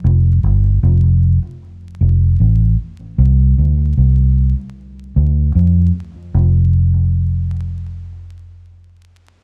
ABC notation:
X:1
M:4/4
L:1/16
Q:"Swing 16ths" 1/4=76
K:Dm
V:1 name="Fingered electric bass" clef=bass
F,,,2 G,,,2 F,,,3 z3 F,,,2 A,,,2 z2 | C,,2 D,,2 C,,3 z3 D,,2 F,,2 z2 | F,,,16 |]